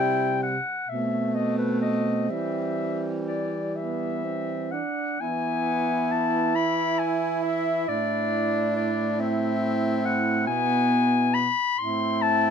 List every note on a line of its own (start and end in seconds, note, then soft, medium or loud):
0.00 0.58 C3 medium
0.00 0.57 G3 medium
0.00 0.59 E4 medium
0.00 0.41 G5 medium
0.43 0.91 F#5 medium
0.87 2.25 B2 medium
0.87 2.31 A3 medium
0.87 3.72 C4 soft
0.87 1.36 E5 medium
1.35 1.57 D#5 medium
1.58 1.81 B4 medium
1.81 2.31 D#5 medium
2.29 4.81 E3 soft
2.29 4.85 G3 soft
2.29 3.11 E5 medium
3.28 3.77 D5 medium
3.76 4.26 B3 soft
3.76 4.73 E5 medium
4.24 4.75 C4 soft
4.71 5.20 D4 soft
4.71 5.22 F#5 medium
5.18 7.84 E3 medium
5.18 6.56 B3 medium
5.18 11.48 E4 medium
5.18 6.13 G#5 medium
6.11 6.57 A5 medium
6.55 7.88 E4 medium
6.55 7.00 B5 medium
6.99 7.43 G#5 medium
7.43 7.90 E5 medium
7.88 10.50 A2 medium
7.88 9.21 D4 medium
7.88 8.75 D5 medium
8.76 9.22 D5 medium
9.20 10.48 C4 medium
9.20 10.07 E5 medium
10.05 10.46 F#5 medium
10.47 11.51 B2 medium
10.47 11.49 B3 medium
10.47 11.36 G#5 medium
11.34 11.80 B5 medium
11.78 12.50 A2 medium
11.78 12.50 C4 medium
11.78 12.50 E4 medium
11.78 12.23 C6 loud
12.22 12.50 A5 loud